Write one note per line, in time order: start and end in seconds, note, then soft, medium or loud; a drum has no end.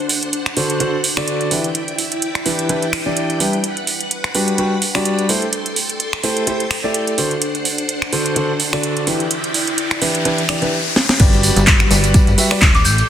0.00 1.49 D4 medium
0.00 1.49 C5 medium
0.00 1.49 F#5 medium
0.09 open hi-hat loud
0.23 closed hi-hat soft
0.33 closed hi-hat medium
0.46 finger snap medium
0.46 closed hi-hat soft
0.57 0.78 D3 medium
0.57 0.78 D4 medium
0.57 0.78 F#4 medium
0.57 0.78 A4 medium
0.57 0.78 C5 medium
0.57 open hi-hat loud
0.70 closed hi-hat soft
0.80 0.95 D3 medium
0.80 0.95 D4 medium
0.80 0.95 F#4 medium
0.80 0.95 A4 medium
0.80 0.95 C5 medium
0.80 closed hi-hat medium
1.04 open hi-hat loud
1.17 1.49 D3 medium
1.17 1.49 D4 medium
1.17 1.49 F#4 medium
1.17 1.49 A4 medium
1.17 1.49 D5 medium
1.17 finger snap medium
1.28 closed hi-hat medium
1.41 closed hi-hat soft
1.51 1.65 E3 medium
1.51 1.65 D4 medium
1.51 1.65 E4 medium
1.51 3.62 E4 medium
1.51 1.65 G4 medium
1.51 1.65 B4 medium
1.51 3.62 D5 medium
1.51 3.62 G5 medium
1.51 open hi-hat medium
1.64 closed hi-hat soft
1.75 closed hi-hat medium
1.88 closed hi-hat soft
1.98 open hi-hat medium
2.12 closed hi-hat soft
2.22 closed hi-hat medium
2.35 finger snap medium
2.35 closed hi-hat soft
2.46 2.67 E3 medium
2.46 2.67 D4 medium
2.46 2.67 E4 medium
2.46 2.67 G4 medium
2.46 2.67 B4 medium
2.46 open hi-hat loud
2.59 closed hi-hat soft
2.69 2.83 E3 medium
2.69 2.83 D4 medium
2.69 2.83 E4 medium
2.69 2.83 G4 medium
2.69 2.83 B4 medium
2.69 closed hi-hat medium
2.82 closed hi-hat soft
2.93 finger snap medium
2.93 open hi-hat medium
3.06 3.38 E3 medium
3.06 3.38 D4 medium
3.06 3.38 E4 medium
3.06 3.38 G4 medium
3.06 3.38 D5 medium
3.17 closed hi-hat medium
3.30 closed hi-hat soft
3.40 3.54 G3 medium
3.40 3.54 D4 medium
3.40 3.54 E4 medium
3.40 3.54 G4 medium
3.40 3.54 B4 medium
3.40 open hi-hat loud
3.53 closed hi-hat soft
3.64 5.28 B4 medium
3.64 5.28 F#5 medium
3.64 5.28 B5 medium
3.64 closed hi-hat medium
3.77 closed hi-hat soft
3.87 open hi-hat medium
4.01 closed hi-hat soft
4.11 closed hi-hat medium
4.24 finger snap medium
4.24 closed hi-hat soft
4.35 4.56 G3 medium
4.35 4.56 D4 medium
4.35 4.56 F#4 medium
4.35 4.56 G4 medium
4.35 4.56 B4 medium
4.35 open hi-hat medium
4.48 closed hi-hat soft
4.58 4.73 G3 medium
4.58 4.73 D4 medium
4.58 4.73 F#4 medium
4.58 4.73 G4 medium
4.58 4.73 B4 medium
4.58 closed hi-hat medium
4.82 open hi-hat medium
4.95 5.27 G3 medium
4.95 5.27 D4 medium
4.95 5.27 F#4 medium
4.95 5.27 G4 medium
4.95 5.27 D5 medium
4.95 finger snap medium
4.95 open hi-hat medium
5.05 closed hi-hat medium
5.19 closed hi-hat soft
5.29 5.43 A3 medium
5.29 5.43 E4 medium
5.29 5.43 G4 medium
5.29 7.16 A4 medium
5.29 5.43 A4 medium
5.29 5.43 C5 medium
5.29 7.16 G5 medium
5.29 7.16 C6 medium
5.29 open hi-hat medium
5.42 closed hi-hat soft
5.53 closed hi-hat medium
5.66 closed hi-hat soft
5.76 open hi-hat medium
5.89 closed hi-hat soft
6.00 closed hi-hat medium
6.13 finger snap medium
6.13 closed hi-hat soft
6.24 6.45 A3 medium
6.24 6.45 E4 medium
6.24 6.45 G4 medium
6.24 6.45 A4 medium
6.24 6.45 C5 medium
6.24 open hi-hat medium
6.37 closed hi-hat soft
6.47 6.61 A3 medium
6.47 6.61 E4 medium
6.47 6.61 G4 medium
6.47 6.61 A4 medium
6.47 6.61 C5 medium
6.47 closed hi-hat medium
6.60 closed hi-hat soft
6.71 finger snap medium
6.71 open hi-hat medium
6.84 7.16 A3 medium
6.84 7.16 E4 medium
6.84 7.16 G4 medium
6.84 7.16 A4 medium
6.84 7.16 D5 medium
6.94 closed hi-hat medium
7.07 closed hi-hat soft
7.18 7.32 D3 medium
7.18 9.05 D4 medium
7.18 7.32 D4 medium
7.18 7.32 F#4 medium
7.18 7.32 A4 medium
7.18 9.05 C5 medium
7.18 7.32 C5 medium
7.18 9.05 F#5 medium
7.18 open hi-hat medium
7.31 closed hi-hat soft
7.42 closed hi-hat medium
7.42 riser medium
7.55 closed hi-hat soft
7.65 open hi-hat medium
7.78 closed hi-hat soft
7.89 closed hi-hat medium
8.02 finger snap medium
8.02 closed hi-hat soft
8.13 8.34 D3 medium
8.13 8.34 D4 medium
8.13 8.34 F#4 medium
8.13 8.34 A4 medium
8.13 8.34 C5 medium
8.13 open hi-hat medium
8.26 closed hi-hat soft
8.36 8.50 D3 medium
8.36 8.50 D4 medium
8.36 8.50 F#4 medium
8.36 8.50 A4 medium
8.36 8.50 C5 medium
8.36 closed hi-hat medium
8.60 open hi-hat medium
8.73 9.05 D3 medium
8.73 9.05 D4 medium
8.73 9.05 F#4 medium
8.73 9.05 A4 medium
8.73 9.05 D5 medium
8.73 finger snap medium
8.73 open hi-hat medium
8.83 closed hi-hat medium
8.97 closed hi-hat soft
9.07 9.21 E3 medium
9.07 9.21 D4 medium
9.07 10.71 E4 medium
9.07 9.21 E4 medium
9.07 9.21 G4 medium
9.07 9.21 B4 medium
9.07 10.71 D5 medium
9.07 10.71 G5 medium
9.07 open hi-hat medium
9.20 closed hi-hat soft
9.31 closed hi-hat medium
9.44 closed hi-hat soft
9.54 open hi-hat loud
9.67 closed hi-hat soft
9.78 closed hi-hat medium
9.91 finger snap medium
9.91 closed hi-hat soft
10.02 10.23 E3 medium
10.02 10.23 D4 medium
10.02 10.23 E4 medium
10.02 10.23 G4 medium
10.02 10.23 B4 medium
10.02 open hi-hat medium
10.15 closed hi-hat soft
10.25 10.39 E3 medium
10.25 10.39 D4 medium
10.25 10.39 E4 medium
10.25 10.39 G4 medium
10.25 10.39 B4 medium
10.25 closed hi-hat medium
10.38 closed hi-hat soft
10.49 10.59 E3 medium
10.49 10.59 D4 medium
10.49 10.59 E4 medium
10.49 10.59 G4 medium
10.49 10.59 D5 medium
10.49 finger snap medium
10.49 open hi-hat medium
10.62 10.74 E3 medium
10.62 10.74 D4 medium
10.62 10.74 E4 medium
10.62 10.74 G4 medium
10.62 10.74 B4 loud
10.62 closed hi-hat soft
10.96 snare medium
11.09 snare medium
11.20 11.50 G1 loud
11.20 12.83 G3 medium
11.20 11.86 G3 loud
11.20 11.86 F#4 loud
11.20 11.86 G4 medium
11.20 11.86 B4 medium
11.20 11.87 D5 loud
11.20 12.83 F#5 medium
11.20 12.83 B5 medium
11.20 kick loud
11.20 closed hi-hat medium
11.20 crash loud
11.20 tambourine medium
11.20 tambourine soft
11.33 closed hi-hat soft
11.33 tambourine soft
11.43 open hi-hat loud
11.43 tambourine medium
11.56 11.86 G1 loud
11.56 closed hi-hat medium
11.56 closed hi-hat soft
11.56 tambourine soft
11.67 kick loud
11.67 snare loud
11.67 clap loud
11.67 closed hi-hat medium
11.67 tambourine medium
11.80 finger snap medium
11.80 snare soft
11.80 closed hi-hat soft
11.80 tambourine soft
11.90 12.21 G1 medium
11.90 12.12 G3 medium
11.90 12.12 F#4 medium
11.90 12.12 G4 medium
11.90 12.12 B4 medium
11.90 12.12 D5 medium
11.90 snare medium
11.90 open hi-hat loud
11.90 tambourine medium
12.04 closed hi-hat medium
12.04 closed hi-hat soft
12.04 tambourine soft
12.14 12.28 G3 medium
12.14 12.28 F#4 medium
12.14 12.28 G4 medium
12.14 12.28 B4 medium
12.14 12.28 D5 loud
12.14 kick loud
12.14 closed hi-hat medium
12.14 tambourine loud
12.14 tambourine soft
12.27 12.35 G1 medium
12.27 closed hi-hat soft
12.27 tambourine soft
12.38 12.48 G3 medium
12.38 12.48 F#4 medium
12.38 12.48 G4 medium
12.38 12.48 B4 medium
12.38 12.48 E5 medium
12.38 open hi-hat loud
12.38 open hi-hat medium
12.38 tambourine medium
12.51 12.63 G3 loud
12.51 12.63 F#4 medium
12.51 12.63 G4 medium
12.51 12.63 B4 medium
12.51 12.63 D5 loud
12.51 finger snap medium
12.51 open hi-hat medium
12.51 tambourine soft
12.61 12.87 D1 medium
12.61 kick loud
12.61 snare loud
12.61 clap loud
12.61 closed hi-hat medium
12.61 tambourine medium
12.61 tambourine soft
12.75 12.83 D6 medium
12.75 snare medium
12.75 closed hi-hat soft
12.75 tambourine soft
12.84 13.03 A1 medium
12.84 13.09 A4 medium
12.84 13.09 G5 medium
12.84 13.09 C6 medium
12.84 13.09 G6 medium
12.84 open hi-hat loud
12.84 tambourine medium
12.98 closed hi-hat soft
12.98 tambourine soft